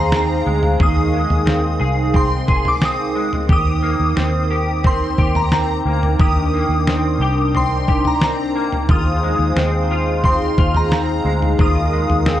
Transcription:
Already playing: D#2 G#3 C4 D#4 G#4 C5 F5
0.00 A#5
0.12 C4, snare
0.16 A#5
0.46 D2 G#3
0.63 floor tom
0.79 D#2 D#3 G#4 A#4 D#6, kick, floor tom
1.13 G#3
1.30 D#2, floor tom
1.46 C4, snare
1.80 C2 G#4
2.14 C4 C6, kick, floor tom
2.48 G#4, kick
2.65 D6, floor tom
2.81 C4 D#6, snare
3.15 G#3
3.33 floor tom
3.49 D#2 G4 C5 G5 D#6, kick, floor tom
3.83 A#3
4.00 D#2
4.16 D#2 C4, snare
4.51 G4
4.84 C4 C6, kick, floor tom
5.18 D#2 G4, kick
5.35 A#5, floor tom
5.52 C4 A#5, snare
5.86 D2 A#3
6.03 floor tom
6.19 D#2 D#3 D4 G4 D#6, kick, floor tom
6.54 A#3
6.69 D#2
6.87 C4, snare
7.19 C2 G4
7.54 C4 C6, floor tom
7.88 G4, kick
8.05 A#5, floor tom
8.22 C4 A#5, snare
8.55 A#3
8.73 floor tom
8.89 D#2 D#4 F4 G#4 C5 F5 D#6, kick, floor tom
9.23 G#3
9.39 D#2
9.56 D#2 C4, snare
9.91 F4
10.24 C4 C6, kick, floor tom
10.58 D#2 F4, kick
10.74 A#5, floor tom
10.92 C4 A#5, snare
11.25 D2 G#3
11.42 floor tom
11.59 D#2 D#3 F4 A#4 D#6, kick, floor tom
11.92 G#3
12.09 D#2, floor tom
12.25 C4, snare

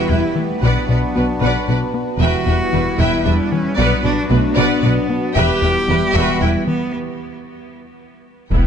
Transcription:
Already playing: G3 B3 E4 F#4 G4 B4
0.09 E1 E2 G3 E4 B4 E5 G5
0.36 E3 A3
0.60 B1 B2 F#3 B3 D4 F#4 B4 D5 F#5
0.89 B1 B2 B4 D5 F#5
1.15 B1 B2 B3 F#4 B4 D5
1.41 B1 B2 B3 B4 D5 F#5
1.67 B1 B2 D4 B4 D5 F#5
1.94 B3
2.20 E1 E2 E3 G3 B3 E4 F#4 B4 E5 G5
2.45 E1 E2 E4 B4 E5 G5
2.72 E1 E2 E3 B3 B4 E5
2.99 E1 E2 E3 E4 B4 E5 G5
3.25 E1 E2 G3 D4 B4 E5 G5
3.51 E3 C#4
3.76 B1 B2 F#3 B3 D4 F#4 B4 D5 F#5
4.02 B1 B2 D4 B4 D5 F#5
4.29 B1 B2 A3 B3 F#4 B4 D5
4.56 B1 B2 B3 B4 D5 F#5
4.81 B1 B2 D4 B4 D5 F#5
5.10 B3
5.35 E1 E2 E3 G3 B3 E4 G4 B4 E5 G5
5.62 E1 E2 E4 B4 E5 G5
5.88 E1 E2 E3 B3 B4 E5
6.14 E1 E2 E3 F#4 B4 E5 G5
6.41 E1 E2 G3 E4 B4 E5 G5
6.67 E3 B3
8.49 E1 E2 E3 B3 E4 G4 B4 G5, taiko

